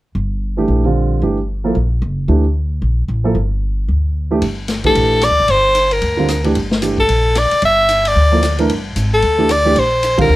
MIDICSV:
0, 0, Header, 1, 6, 480
1, 0, Start_track
1, 0, Tempo, 266785
1, 281, Time_signature, 4, 2, 24, 8
1, 18638, End_track
2, 0, Start_track
2, 0, Title_t, "Soprano saxophone"
2, 0, Program_c, 0, 64
2, 8756, Note_on_c, 0, 69, 84
2, 9435, Note_on_c, 0, 74, 106
2, 9462, Note_off_c, 0, 69, 0
2, 9911, Note_on_c, 0, 72, 90
2, 9938, Note_off_c, 0, 74, 0
2, 10667, Note_on_c, 0, 70, 72
2, 10694, Note_off_c, 0, 72, 0
2, 11615, Note_off_c, 0, 70, 0
2, 12596, Note_on_c, 0, 69, 73
2, 13290, Note_on_c, 0, 74, 89
2, 13317, Note_off_c, 0, 69, 0
2, 13745, Note_off_c, 0, 74, 0
2, 13769, Note_on_c, 0, 76, 98
2, 14542, Note_on_c, 0, 74, 84
2, 14569, Note_off_c, 0, 76, 0
2, 15475, Note_off_c, 0, 74, 0
2, 16442, Note_on_c, 0, 69, 74
2, 17130, Note_on_c, 0, 74, 88
2, 17157, Note_off_c, 0, 69, 0
2, 17614, Note_on_c, 0, 72, 77
2, 17641, Note_off_c, 0, 74, 0
2, 18355, Note_off_c, 0, 72, 0
2, 18382, Note_on_c, 0, 70, 87
2, 18638, Note_off_c, 0, 70, 0
2, 18638, End_track
3, 0, Start_track
3, 0, Title_t, "Grand piano"
3, 0, Program_c, 1, 0
3, 1026, Note_on_c, 1, 52, 58
3, 1036, Note_on_c, 1, 57, 56
3, 1046, Note_on_c, 1, 62, 51
3, 1051, Note_on_c, 1, 67, 67
3, 1487, Note_off_c, 1, 52, 0
3, 1492, Note_off_c, 1, 57, 0
3, 1497, Note_off_c, 1, 62, 0
3, 1499, Note_off_c, 1, 67, 0
3, 1524, Note_on_c, 1, 55, 52
3, 1526, Note_on_c, 1, 50, 58
3, 1539, Note_on_c, 1, 60, 51
3, 1543, Note_on_c, 1, 65, 61
3, 2159, Note_off_c, 1, 55, 0
3, 2160, Note_off_c, 1, 50, 0
3, 2167, Note_off_c, 1, 60, 0
3, 2169, Note_off_c, 1, 65, 0
3, 2196, Note_on_c, 1, 52, 58
3, 2203, Note_on_c, 1, 57, 46
3, 2208, Note_on_c, 1, 62, 51
3, 2217, Note_on_c, 1, 67, 61
3, 2454, Note_off_c, 1, 52, 0
3, 2458, Note_off_c, 1, 57, 0
3, 2460, Note_off_c, 1, 62, 0
3, 2465, Note_off_c, 1, 67, 0
3, 2952, Note_on_c, 1, 53, 58
3, 2961, Note_on_c, 1, 58, 55
3, 2966, Note_on_c, 1, 64, 50
3, 2976, Note_on_c, 1, 69, 62
3, 3132, Note_off_c, 1, 53, 0
3, 3137, Note_off_c, 1, 58, 0
3, 3139, Note_off_c, 1, 64, 0
3, 3144, Note_off_c, 1, 69, 0
3, 4105, Note_on_c, 1, 52, 60
3, 4112, Note_on_c, 1, 57, 51
3, 4121, Note_on_c, 1, 62, 53
3, 4125, Note_on_c, 1, 67, 59
3, 4368, Note_off_c, 1, 52, 0
3, 4372, Note_off_c, 1, 57, 0
3, 4376, Note_off_c, 1, 62, 0
3, 4378, Note_off_c, 1, 67, 0
3, 5829, Note_on_c, 1, 53, 62
3, 5837, Note_on_c, 1, 58, 52
3, 5843, Note_on_c, 1, 64, 52
3, 5853, Note_on_c, 1, 69, 73
3, 6010, Note_off_c, 1, 53, 0
3, 6014, Note_off_c, 1, 58, 0
3, 6017, Note_off_c, 1, 64, 0
3, 6022, Note_off_c, 1, 69, 0
3, 7749, Note_on_c, 1, 52, 56
3, 7756, Note_on_c, 1, 57, 65
3, 7762, Note_on_c, 1, 62, 54
3, 7763, Note_on_c, 1, 67, 67
3, 7930, Note_off_c, 1, 52, 0
3, 7934, Note_off_c, 1, 57, 0
3, 7937, Note_off_c, 1, 62, 0
3, 7937, Note_off_c, 1, 67, 0
3, 8714, Note_on_c, 1, 52, 63
3, 8716, Note_on_c, 1, 57, 49
3, 8727, Note_on_c, 1, 62, 49
3, 8732, Note_on_c, 1, 67, 65
3, 9353, Note_off_c, 1, 52, 0
3, 9354, Note_off_c, 1, 57, 0
3, 9360, Note_off_c, 1, 62, 0
3, 9362, Note_off_c, 1, 67, 0
3, 11106, Note_on_c, 1, 50, 65
3, 11118, Note_on_c, 1, 55, 48
3, 11127, Note_on_c, 1, 60, 56
3, 11135, Note_on_c, 1, 65, 60
3, 11289, Note_off_c, 1, 50, 0
3, 11295, Note_off_c, 1, 55, 0
3, 11300, Note_off_c, 1, 60, 0
3, 11304, Note_off_c, 1, 65, 0
3, 11585, Note_on_c, 1, 52, 66
3, 11596, Note_on_c, 1, 57, 60
3, 11603, Note_on_c, 1, 62, 69
3, 11608, Note_on_c, 1, 67, 68
3, 11769, Note_off_c, 1, 52, 0
3, 11775, Note_off_c, 1, 57, 0
3, 11778, Note_off_c, 1, 62, 0
3, 11780, Note_off_c, 1, 67, 0
3, 12255, Note_on_c, 1, 52, 52
3, 12263, Note_on_c, 1, 57, 45
3, 12278, Note_on_c, 1, 62, 52
3, 12280, Note_on_c, 1, 67, 62
3, 12524, Note_off_c, 1, 52, 0
3, 12528, Note_off_c, 1, 57, 0
3, 12535, Note_off_c, 1, 62, 0
3, 12536, Note_off_c, 1, 67, 0
3, 14963, Note_on_c, 1, 53, 60
3, 14975, Note_on_c, 1, 58, 56
3, 14980, Note_on_c, 1, 64, 50
3, 14983, Note_on_c, 1, 69, 55
3, 15139, Note_off_c, 1, 53, 0
3, 15145, Note_off_c, 1, 58, 0
3, 15148, Note_off_c, 1, 64, 0
3, 15150, Note_off_c, 1, 69, 0
3, 15452, Note_on_c, 1, 52, 73
3, 15461, Note_on_c, 1, 57, 64
3, 15468, Note_on_c, 1, 62, 63
3, 15477, Note_on_c, 1, 70, 79
3, 15624, Note_off_c, 1, 52, 0
3, 15628, Note_off_c, 1, 57, 0
3, 15632, Note_off_c, 1, 62, 0
3, 15637, Note_off_c, 1, 70, 0
3, 16878, Note_on_c, 1, 52, 58
3, 16879, Note_on_c, 1, 57, 52
3, 16891, Note_on_c, 1, 62, 53
3, 16897, Note_on_c, 1, 67, 61
3, 17058, Note_off_c, 1, 52, 0
3, 17058, Note_off_c, 1, 57, 0
3, 17064, Note_off_c, 1, 62, 0
3, 17067, Note_off_c, 1, 67, 0
3, 17365, Note_on_c, 1, 52, 64
3, 17370, Note_on_c, 1, 57, 60
3, 17378, Note_on_c, 1, 62, 59
3, 17385, Note_on_c, 1, 67, 79
3, 17541, Note_off_c, 1, 52, 0
3, 17544, Note_off_c, 1, 57, 0
3, 17548, Note_off_c, 1, 62, 0
3, 17551, Note_off_c, 1, 67, 0
3, 18308, Note_on_c, 1, 55, 68
3, 18311, Note_on_c, 1, 50, 71
3, 18320, Note_on_c, 1, 60, 64
3, 18323, Note_on_c, 1, 65, 76
3, 18493, Note_off_c, 1, 55, 0
3, 18495, Note_off_c, 1, 50, 0
3, 18499, Note_off_c, 1, 60, 0
3, 18501, Note_off_c, 1, 65, 0
3, 18638, End_track
4, 0, Start_track
4, 0, Title_t, "Upright bass"
4, 0, Program_c, 2, 32
4, 270, Note_on_c, 2, 31, 75
4, 1186, Note_off_c, 2, 31, 0
4, 1224, Note_on_c, 2, 34, 65
4, 2142, Note_off_c, 2, 34, 0
4, 2191, Note_on_c, 2, 31, 70
4, 3106, Note_off_c, 2, 31, 0
4, 3150, Note_on_c, 2, 34, 75
4, 3599, Note_off_c, 2, 34, 0
4, 3632, Note_on_c, 2, 30, 78
4, 4080, Note_off_c, 2, 30, 0
4, 4107, Note_on_c, 2, 38, 76
4, 5023, Note_off_c, 2, 38, 0
4, 5071, Note_on_c, 2, 34, 76
4, 5520, Note_off_c, 2, 34, 0
4, 5548, Note_on_c, 2, 33, 80
4, 5998, Note_off_c, 2, 33, 0
4, 6025, Note_on_c, 2, 31, 77
4, 6942, Note_off_c, 2, 31, 0
4, 6991, Note_on_c, 2, 38, 69
4, 7906, Note_off_c, 2, 38, 0
4, 7951, Note_on_c, 2, 31, 79
4, 8866, Note_off_c, 2, 31, 0
4, 8903, Note_on_c, 2, 34, 74
4, 9504, Note_off_c, 2, 34, 0
4, 9547, Note_on_c, 2, 38, 59
4, 9700, Note_off_c, 2, 38, 0
4, 9709, Note_on_c, 2, 33, 63
4, 9858, Note_off_c, 2, 33, 0
4, 9868, Note_on_c, 2, 31, 79
4, 10785, Note_off_c, 2, 31, 0
4, 10829, Note_on_c, 2, 38, 76
4, 11746, Note_off_c, 2, 38, 0
4, 11804, Note_on_c, 2, 31, 79
4, 12714, Note_off_c, 2, 31, 0
4, 12744, Note_on_c, 2, 34, 70
4, 13464, Note_off_c, 2, 34, 0
4, 13716, Note_on_c, 2, 31, 82
4, 14631, Note_off_c, 2, 31, 0
4, 14677, Note_on_c, 2, 38, 80
4, 15591, Note_off_c, 2, 38, 0
4, 15645, Note_on_c, 2, 31, 73
4, 16090, Note_off_c, 2, 31, 0
4, 16119, Note_on_c, 2, 32, 76
4, 16567, Note_off_c, 2, 32, 0
4, 16602, Note_on_c, 2, 38, 75
4, 17515, Note_off_c, 2, 38, 0
4, 17556, Note_on_c, 2, 34, 70
4, 18472, Note_off_c, 2, 34, 0
4, 18516, Note_on_c, 2, 38, 85
4, 18638, Note_off_c, 2, 38, 0
4, 18638, End_track
5, 0, Start_track
5, 0, Title_t, "Muted upright bass strokes"
5, 13528, Note_on_c, 9, 29, 39
5, 13708, Note_off_c, 9, 29, 0
5, 18638, End_track
6, 0, Start_track
6, 0, Title_t, "Drums"
6, 7946, Note_on_c, 9, 51, 52
6, 8126, Note_off_c, 9, 51, 0
6, 8420, Note_on_c, 9, 44, 56
6, 8420, Note_on_c, 9, 51, 58
6, 8429, Note_on_c, 9, 38, 33
6, 8600, Note_off_c, 9, 44, 0
6, 8600, Note_off_c, 9, 51, 0
6, 8609, Note_off_c, 9, 38, 0
6, 8706, Note_on_c, 9, 51, 39
6, 8718, Note_on_c, 9, 36, 52
6, 8886, Note_off_c, 9, 51, 0
6, 8898, Note_off_c, 9, 36, 0
6, 8911, Note_on_c, 9, 51, 54
6, 9090, Note_off_c, 9, 51, 0
6, 9381, Note_on_c, 9, 44, 55
6, 9381, Note_on_c, 9, 51, 60
6, 9390, Note_on_c, 9, 37, 62
6, 9561, Note_off_c, 9, 44, 0
6, 9561, Note_off_c, 9, 51, 0
6, 9570, Note_off_c, 9, 37, 0
6, 9858, Note_on_c, 9, 51, 58
6, 10038, Note_off_c, 9, 51, 0
6, 10339, Note_on_c, 9, 44, 51
6, 10339, Note_on_c, 9, 51, 65
6, 10519, Note_off_c, 9, 44, 0
6, 10519, Note_off_c, 9, 51, 0
6, 10633, Note_on_c, 9, 51, 43
6, 10813, Note_off_c, 9, 51, 0
6, 10823, Note_on_c, 9, 51, 55
6, 11002, Note_off_c, 9, 51, 0
6, 11305, Note_on_c, 9, 44, 55
6, 11305, Note_on_c, 9, 51, 56
6, 11314, Note_on_c, 9, 37, 59
6, 11485, Note_off_c, 9, 44, 0
6, 11485, Note_off_c, 9, 51, 0
6, 11494, Note_off_c, 9, 37, 0
6, 11590, Note_on_c, 9, 51, 41
6, 11770, Note_off_c, 9, 51, 0
6, 11785, Note_on_c, 9, 51, 55
6, 11965, Note_off_c, 9, 51, 0
6, 12080, Note_on_c, 9, 38, 51
6, 12260, Note_off_c, 9, 38, 0
6, 12267, Note_on_c, 9, 44, 57
6, 12267, Note_on_c, 9, 51, 60
6, 12447, Note_off_c, 9, 44, 0
6, 12447, Note_off_c, 9, 51, 0
6, 12562, Note_on_c, 9, 36, 45
6, 12742, Note_off_c, 9, 36, 0
6, 12749, Note_on_c, 9, 51, 54
6, 12929, Note_off_c, 9, 51, 0
6, 13227, Note_on_c, 9, 44, 61
6, 13227, Note_on_c, 9, 51, 64
6, 13236, Note_on_c, 9, 37, 60
6, 13407, Note_off_c, 9, 44, 0
6, 13407, Note_off_c, 9, 51, 0
6, 13416, Note_off_c, 9, 37, 0
6, 13514, Note_on_c, 9, 51, 44
6, 13694, Note_off_c, 9, 51, 0
6, 13705, Note_on_c, 9, 51, 56
6, 13884, Note_off_c, 9, 51, 0
6, 14186, Note_on_c, 9, 44, 57
6, 14186, Note_on_c, 9, 51, 65
6, 14366, Note_off_c, 9, 44, 0
6, 14366, Note_off_c, 9, 51, 0
6, 14484, Note_on_c, 9, 51, 65
6, 14663, Note_off_c, 9, 51, 0
6, 15159, Note_on_c, 9, 44, 51
6, 15159, Note_on_c, 9, 51, 64
6, 15168, Note_on_c, 9, 37, 61
6, 15339, Note_off_c, 9, 44, 0
6, 15339, Note_off_c, 9, 51, 0
6, 15348, Note_off_c, 9, 37, 0
6, 15445, Note_on_c, 9, 51, 43
6, 15624, Note_off_c, 9, 51, 0
6, 15643, Note_on_c, 9, 51, 59
6, 15823, Note_off_c, 9, 51, 0
6, 16116, Note_on_c, 9, 44, 64
6, 16116, Note_on_c, 9, 51, 61
6, 16296, Note_off_c, 9, 44, 0
6, 16296, Note_off_c, 9, 51, 0
6, 16593, Note_on_c, 9, 51, 52
6, 16773, Note_off_c, 9, 51, 0
6, 17074, Note_on_c, 9, 44, 55
6, 17074, Note_on_c, 9, 51, 66
6, 17083, Note_on_c, 9, 37, 56
6, 17254, Note_off_c, 9, 44, 0
6, 17254, Note_off_c, 9, 51, 0
6, 17263, Note_off_c, 9, 37, 0
6, 17555, Note_on_c, 9, 51, 56
6, 17735, Note_off_c, 9, 51, 0
6, 18040, Note_on_c, 9, 44, 61
6, 18040, Note_on_c, 9, 51, 65
6, 18220, Note_off_c, 9, 44, 0
6, 18220, Note_off_c, 9, 51, 0
6, 18322, Note_on_c, 9, 51, 69
6, 18325, Note_on_c, 9, 36, 72
6, 18502, Note_off_c, 9, 51, 0
6, 18505, Note_off_c, 9, 36, 0
6, 18638, End_track
0, 0, End_of_file